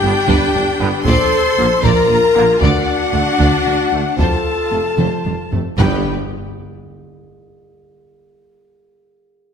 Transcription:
Already playing: G2 D4 G4 G5
0.02 G1 G2 D3 B3 G4
0.28 G1 G2 B4, taiko
0.54 G1 G2 D4
0.80 G1 G2 D3 B3 G4
1.05 A#1 A#2 A4 C5 D5 C6, taiko
1.57 A#1 A#2 D3 A#3 A#4
1.82 A#1 A#2 F4 A#4 D5 A#5, taiko
2.09 A#1 A#2 F4
2.35 A#1 A#2 D3 A#3 A#4, taiko rim
2.60 D2 D4 F#4 D5 F#5, taiko
2.88 taiko rim
3.12 D2 D3 A3 A4
3.39 D2 D5, taiko
3.66 D2 F#4
3.92 D2 D3 A3 A4
4.18 F1 F2 F4 A4 C5 A5, taiko
4.71 F1 F2 C3 A3 A4
4.98 F1 F2 C5, taiko mid
5.24 F1 F2 F4, taiko mid
5.51 F1 F2 C3 A3 A4, taiko low
5.78 G1 G2 D3 B3 G4 B4 G5, taiko low, impact

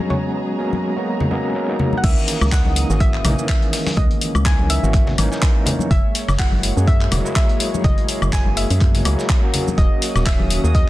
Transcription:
Already playing: F#3 G#3 B3 C#4 F#4 G#4 C#5 A#5
0.10 C#5 A#5, low conga
0.58 F#3 G#3 A#3 B3 C#4
0.73 high conga
0.96 F#3 G#3 A#3 B3 F#4
1.20 low conga
1.31 F#3 G#3 A#3 B3 C#4, high conga
1.55 F#3 G#3 A#3 B3 C#4
1.68 F#3 G#3 A#3 B3 D#4
1.79 low conga
1.93 high conga
1.97 F#5
2.03 C#2 D#3 E3 G#3 A#3 C#4 E5 D#6, kick, closed hi-hat, crash, shaker
2.28 snare, closed hi-hat, open hi-hat, shaker
2.41 C#2, snare, high woodblock, shaker
2.52 E3 A#3 C#4 D#4 F#5, kick, snare, clap, open hi-hat
2.65 high conga
2.76 closed hi-hat, open hi-hat, shaker
2.89 G#1 E3 A#3 C#4 F#4, shaker
3.00 E5, kick, closed hi-hat, shaker
3.14 clap
3.24 A#1 E3 A#3 C#4 D#4, snare, closed hi-hat, open hi-hat, high conga, low conga, high woodblock, shaker
3.37 D#3 E3 A#3 C#4, shaker
3.49 E5, kick, snare, clap, closed hi-hat, shaker
3.62 closed hi-hat
3.73 snare, open hi-hat, shaker
3.87 snare, open hi-hat, high conga, shaker
3.97 C#2 C#5 D#5, kick, closed hi-hat, low conga, shaker
4.11 closed hi-hat
4.21 closed hi-hat, open hi-hat, shaker
4.35 C#2, high woodblock, shaker
4.45 E3 A#3 C#4 G#5, kick, snare, clap, closed hi-hat, shaker
4.59 high conga
4.70 E5, closed hi-hat, open hi-hat, shaker
4.83 G#1 E3 A#3 C#4 F#4, shaker
4.94 kick, clap, closed hi-hat, shaker
5.07 snare, low conga
5.18 G#1 E3 A#3 C#4 D#4, closed hi-hat, open hi-hat, high conga, high woodblock, shaker
5.31 E3 A#3 C#4 D#4, snare, shaker
5.42 kick, snare, clap, closed hi-hat, shaker
5.66 closed hi-hat, open hi-hat, low conga, shaker
5.79 high conga, shaker
5.91 F#1 A#3 G#4 E5, kick, closed hi-hat, shaker
6.15 snare, closed hi-hat, open hi-hat, shaker
6.28 F#1, snare, high woodblock, shaker
6.39 F#3 G#3 A#3 E4 F#5, kick, snare, clap, open hi-hat
6.52 high conga
6.63 closed hi-hat, open hi-hat, shaker
6.76 F#2 F#3 G#3 A#3 G#4, shaker
6.87 E5, kick, closed hi-hat, shaker
7.01 clap
7.11 E1 F#3 G#3 A#3 E4, snare, closed hi-hat, open hi-hat, high conga, low conga, high woodblock, shaker
7.24 F#3 G#3 A#3 E4, shaker
7.36 E5, kick, snare, clap, closed hi-hat
7.49 closed hi-hat
7.60 closed hi-hat, open hi-hat, shaker
7.74 high conga, shaker
7.84 F#1 D#5, kick, closed hi-hat, low conga, shaker
7.98 closed hi-hat
8.08 closed hi-hat, open hi-hat, shaker
8.22 F#1, high woodblock, shaker
8.32 F#3 G#3 A#3 E4 G#5, kick, snare, clap, closed hi-hat
8.46 high conga
8.57 E5, closed hi-hat, open hi-hat, shaker
8.70 F#2 F#3 G#3 A#3 G#4, open hi-hat, shaker
8.81 kick, clap, closed hi-hat, shaker
8.95 snare, open hi-hat, low conga
9.05 C#2 F#3 G#3 A#3 E4, closed hi-hat, open hi-hat, high conga, high woodblock, shaker
9.19 snare, shaker
9.29 F#3 G#3, kick, snare, clap, closed hi-hat, shaker
9.42 F#3 A#3 C#4 F#4
9.54 C#4 F#4 D#6, closed hi-hat, open hi-hat, low conga, shaker
9.68 high conga, shaker
9.78 D#1 D#5, kick, closed hi-hat, shaker
10.02 snare, closed hi-hat, open hi-hat, shaker
10.15 D#1, snare, high woodblock, shaker
10.26 D#3 E5, kick, snare, clap, open hi-hat, shaker
10.40 high conga
10.50 closed hi-hat, open hi-hat, shaker
10.64 D#2 F#3 A#3 C#4 G#4, shaker
10.75 D#5, kick, closed hi-hat, shaker

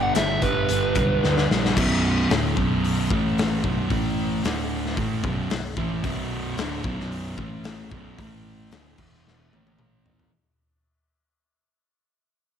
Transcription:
Already playing: G1 G2 D3 G3
0.03 F#5
0.15 G1 G2 D3 G3 E5, snare, closed hi-hat
0.42 G1 G2 D3 G3 B4, kick, closed hi-hat
0.69 G1 G2 D3 G3, closed hi-hat
0.95 B1 G2 D3 G3, kick, closed hi-hat
1.24 D2 G2 D3 G3, snare
1.37 snare
1.50 A#1 G2 D3 G3, snare
1.65 snare
1.76 B0 B1 F#2 B2, kick, crash
2.30 D1 D2 A2 D3, snare, open hi-hat
2.57 B0 B1 F#2 B2, kick
2.84 open hi-hat
3.10 A1 A2 E3 A3, kick
3.38 snare, open hi-hat
3.63 B0 B1 F#2 B2, kick
3.90 A1 A2 E3 A3, kick, open hi-hat
4.44 D1 D2 A2 D3, snare, open hi-hat
4.86 snare
4.97 A1 A2 E3 A3, kick, open hi-hat
5.24 B0 B1 F#2 B2, kick
5.50 B0 B1 F#2, snare, open hi-hat
5.76 A1 A2 E3 A3, kick
6.04 B0 B1 F#2 B2, kick, open hi-hat
6.57 D1 D2 A2 D3, snare, open hi-hat
6.84 B0 B1 F#2 B2, kick
7.00 snare
7.12 open hi-hat
7.38 A1 A2 E3 A3, kick
7.64 snare, open hi-hat
7.91 B0 B1 F#2 B2, kick
8.18 A1 A2 E3 A3, kick, open hi-hat
8.70 D1 D2 A2 D3, snare, open hi-hat
8.98 E1 E2 B2 E3, kick, crash
9.14 snare
9.27 snare
9.50 A1 A2 E3 A3, high tom
9.67 high tom
9.79 mid tom
10.06 floor tom
10.19 floor tom

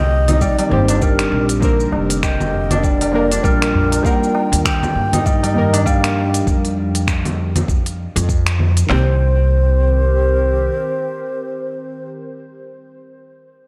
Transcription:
Already playing: C2 D#3 A#3 C4 D#4 F4 G4 A#4 D#5
0.09 G4
0.28 D#4, open hi-hat, tabla tin, low conga, cabasa
0.41 G3 D5, kick, cabasa
0.58 G3, open hi-hat, tabla na, tabla tin, cabasa
0.69 G1 D#3 A#3 C4 G4 C5, tabla ge
0.88 D4, open hi-hat, tabla na, tabla tin, cabasa
0.96 C5
1.02 G3 A#4, kick, cabasa
1.19 finger snap, open hi-hat, cabasa
1.32 A#1, tabla tin
1.49 open hi-hat, cabasa
1.60 D3 F3 A#3 C4, kick, cabasa
1.64 A#4
1.80 cabasa
1.91 F1 A#3, tabla na, tabla tin
2.10 open hi-hat, cabasa
2.22 G4 D#5, finger snap, kick, cabasa
2.40 low conga, cabasa
2.53 tabla ge
2.71 D4 F4, open hi-hat, tabla tin, low conga, cabasa
2.83 G3 D5, kick, cabasa
3.01 G3, open hi-hat, tabla na, cabasa
3.11 F3 A#3 D4, tabla na, tabla tin
3.15 A#4
3.32 D4, open hi-hat, cabasa
3.44 A#1 G3 A#4, kick, cabasa
3.61 finger snap, open hi-hat, tabla tin, cabasa
3.74 tabla ge
3.92 open hi-hat, tabla na, cabasa
4.02 D#3 G3 A#3 C4 D#4 A#4 F#5, kick, cabasa
4.15 G5
4.23 cabasa
4.35 tabla na, tabla tin
4.52 D#2, open hi-hat, cabasa
4.65 G4 G5, finger snap, kick, cabasa
4.83 low conga, cabasa
4.95 G2
5.12 D#4 G4, open hi-hat, tabla tin, low conga, cabasa
5.25 G3 D#5, kick, cabasa
5.43 G3, open hi-hat, tabla na, tabla tin, cabasa
5.54 D#3 G3 A#3, tabla ge
5.58 A#4
5.73 D4, open hi-hat, tabla na, tabla tin, cabasa
5.86 G3 F5, kick, cabasa
6.04 finger snap, open hi-hat, cabasa
6.17 tabla tin
6.34 open hi-hat, cabasa
6.47 F2, kick, cabasa
6.65 open hi-hat, cabasa
6.95 open hi-hat, cabasa
7.08 finger snap, kick, cabasa
7.25 open hi-hat, low conga, cabasa
7.56 open hi-hat, low conga, cabasa
7.68 F2, kick, cabasa
7.86 open hi-hat, cabasa
8.16 F2, open hi-hat, cabasa
8.29 kick, cabasa
8.47 finger snap, open hi-hat, cabasa
8.59 low conga
8.77 open hi-hat, cabasa
8.86 C2 D#3 A#3 C4 C5, snare, clap
8.91 C4 G4
9.00 C4
9.09 G4
9.16 A#4

